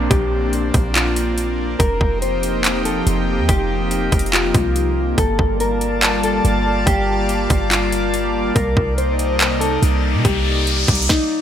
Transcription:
Already playing: analog synth pad A#3 C4 D4, downlifter
0.10 808-style bass A#1, clean electric guitar G4, kick, closed hi-hat
0.53 closed hi-hat
0.74 808-style bass A#1, kick, closed hi-hat
0.95 clean electric guitar F4, clap, closed hi-hat
1.16 closed hi-hat
1.38 closed hi-hat
1.79 808-style bass F1, analog synth pad F3 A#3 C4 D#4 G4, clean electric guitar A#4, kick, closed hi-hat
2.01 808-style bass F1, kick
2.22 clean electric guitar C5, closed hi-hat
2.43 closed hi-hat
2.64 clap, closed hi-hat
2.85 clean electric guitar A4, closed hi-hat
3.07 808-style bass F1, closed hi-hat
3.38 808-style bass F2
3.49 808-style bass F1, clean electric guitar G4, kick, closed hi-hat
3.91 closed hi-hat
4.12 808-style bass F1, kick, closed hi-hat
4.19 closed hi-hat
4.26 closed hi-hat
4.33 clean electric guitar F4, clap, closed hi-hat
4.54 808-style bass C2, kick, closed hi-hat
4.76 closed hi-hat
5.18 808-style bass G1, analog synth pad G3 F4 D5 A5, synth texture A#3 F5 A5, clean electric guitar A4, kick, closed hi-hat
5.39 808-style bass G1, kick
5.60 clean electric guitar A#4, closed hi-hat
5.81 closed hi-hat
6.03 clap, closed hi-hat
6.23 clean electric guitar A4, closed hi-hat
6.45 808-style bass G1, closed hi-hat
6.86 808-style bass G1, clean electric guitar G4, kick, closed hi-hat
7.29 closed hi-hat
7.50 808-style bass G1, kick, closed hi-hat
7.71 clean electric guitar F4, clap, closed hi-hat
7.92 closed hi-hat
8.14 closed hi-hat
8.55 808-style bass C2, analog synth pad C3 A#3 D#4, synth texture D#4 D5, clean electric guitar A#4, kick, closed hi-hat, riser
8.77 808-style bass C2, kick
8.98 clean electric guitar C5, closed hi-hat
9.19 closed hi-hat
9.40 clap, closed hi-hat
9.61 clean electric guitar A4, closed hi-hat
9.82 808-style bass C2, closed hi-hat
10.14 808-style bass C3
10.25 808-style bass C2, clean electric guitar G4, kick, closed hi-hat
10.67 closed hi-hat
10.88 808-style bass C2, kick, closed hi-hat
10.95 closed hi-hat
11.02 closed hi-hat
11.09 clean electric guitar D#4, kick, snare

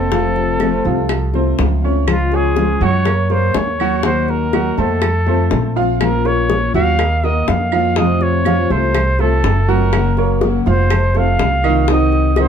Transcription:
Already playing: upright bass F1, steel-string acoustic guitar A#3 D#4 F#4, trumpet A4
0.11 steel-string acoustic guitar C3 F3 A3 C4 F4, grand piano F3 F4, high bongo
0.36 high bongo
0.60 steel-string acoustic guitar C3 F3 A3 C4 F4, grand piano A3 A4, high bongo, claves
0.85 upright bass C2, grand piano F3 F4, steel-string acoustic guitar A3 C4 F4, high bongo
1.09 muted steel-string acoustic guitar stroke, high bongo, claves
1.33 steel-string acoustic guitar A3 C4 F4, grand piano C4 C5, high bongo
1.59 upright bass C#2, grand piano F3 F4, high bongo, low bongo
1.82 steel-string acoustic guitar A3 C4 F4, grand piano C#4 C#5
2.07 steel-string acoustic guitar C#3 F3 G#3 C#4 F4, high bongo, claves
2.11 trumpet F4
2.32 grand piano G#3 G#4 C#5, trumpet G#4, high bongo
2.56 steel-string acoustic guitar C#3 F3 G#3 C#4 F4, high bongo
2.80 upright bass F#2, grand piano F#3 F#4 F#5, steel-string acoustic guitar G#3 C#4 F4, trumpet C#5, high bongo
3.05 grand piano A#3 A#4 C#5, muted steel-string acoustic guitar stroke, high bongo, claves
3.30 grand piano A#3 A#4 C#5, steel-string acoustic guitar A#3 C#4 G#4, trumpet C5, high bongo
3.54 upright bass D#2, trumpet C#5, high bongo, low bongo
3.78 grand piano F#3 F#4 F#5, steel-string acoustic guitar A#3 C#4 G#4, claves
4.03 steel-string acoustic guitar D#3 A#3 D#4 F#4, grand piano F#3 F#4 F#5, trumpet C5, high bongo
4.28 trumpet A#4, high bongo
4.53 steel-string acoustic guitar D#3 A#3 D#4 F#4, grand piano F#3 F#4 F#5, high bongo, claves
4.78 upright bass F2, grand piano A3 A4 C5, steel-string acoustic guitar A#3 D#4 F#4, trumpet A4, high bongo
5.02 muted steel-string acoustic guitar stroke, high bongo, claves
5.26 grand piano A3 A4 C5, steel-string acoustic guitar A3 C4 F4, high bongo
5.51 upright bass A#1, high bongo, low bongo
5.76 grand piano F3 F4 F5, steel-string acoustic guitar A3 C4 F4
6.00 steel-string acoustic guitar F3 A#3 C#4 F4, trumpet A#4, high bongo, claves
6.25 grand piano A#3 A#4 C#5, trumpet C#5, high bongo
6.49 steel-string acoustic guitar F3 A#3 C#4 F4, high bongo
6.74 upright bass D#2, grand piano F#3 F#4 F#5, steel-string acoustic guitar A#3 C#4 F4, trumpet F5, high bongo
6.99 grand piano A#3 A#4 D#5, muted steel-string acoustic guitar stroke, high bongo, claves
7.24 grand piano A#3 A#4 D#5, steel-string acoustic guitar A#3 D#4 F#4, trumpet D#5, high bongo
7.48 upright bass F2, trumpet F5, high bongo, low bongo
7.72 grand piano F3 F4 F5, steel-string acoustic guitar A#3 D#4 F#4, claves
7.96 steel-string acoustic guitar C3 F3 A3 C4 F4, grand piano F3 F4 F5, trumpet D#5, high bongo
8.21 trumpet C#5, high bongo
8.45 steel-string acoustic guitar C3 F3 A3 C4 F4, grand piano F3 F4 F5, high bongo, claves
8.70 upright bass C2, grand piano A3 A4 C5, steel-string acoustic guitar A3 C4 F4, trumpet C5, high bongo
8.95 muted steel-string acoustic guitar stroke, high bongo, claves
9.19 grand piano A3 A4 C5, steel-string acoustic guitar A3 C4 F4, trumpet A4, high bongo
9.44 upright bass F#1, high bongo, low bongo
9.68 grand piano F#3 F#4 F#5, steel-string acoustic guitar A3 C4 F4, trumpet A#4
9.93 steel-string acoustic guitar C#3 F#3 A#3 C#4 F#4, high bongo, claves
10.17 grand piano A#3 A#4 C#5, high bongo
10.41 steel-string acoustic guitar C#3 F#3 A#3, high bongo
10.46 steel-string acoustic guitar C#4 F#4
10.66 upright bass F1, grand piano F3 F4 F5, steel-string acoustic guitar A#3 C#4 F#4, trumpet C5, high bongo
10.90 grand piano A3 A4 C5, muted steel-string acoustic guitar stroke, high bongo, claves
11.15 grand piano A3 A4 C5, steel-string acoustic guitar C4 F4, trumpet F5, high bongo
11.19 steel-string acoustic guitar A3
11.39 upright bass C2, high bongo, low bongo
11.64 grand piano D#3 D#4 D#5, steel-string acoustic guitar C4 F4, claves
11.68 steel-string acoustic guitar A3
11.88 grand piano D#3 D#4 D#5, steel-string acoustic guitar C4 D#4, trumpet D#5, high bongo
11.92 steel-string acoustic guitar F#4
12.12 high bongo
12.36 grand piano D#3 D#4 D#5, steel-string acoustic guitar C4 D#4 F#4, high bongo, claves
12.41 trumpet C5

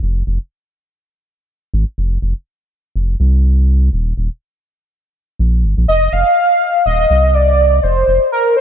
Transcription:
0.03 analog synth bass F1
0.27 analog synth bass F1
1.74 analog synth bass G#1
1.98 analog synth bass F1
2.22 analog synth bass F1
2.96 analog synth bass F1
3.20 analog synth bass C2
3.93 analog synth bass D#1
4.17 analog synth bass D#1
5.39 analog synth bass A#1
5.64 analog synth bass G1
5.77 analog synth bass A#1
5.88 analog synth bass F1, soft synth lead D#5
6.13 analog synth bass F1, soft synth lead F5
6.86 analog synth bass D#1, soft synth lead D#5
7.10 analog synth bass C2
7.35 soft synth lead D5
7.83 analog synth bass F1, soft synth lead C5
8.08 analog synth bass F1
8.32 soft synth lead A#4
8.57 soft synth lead C5

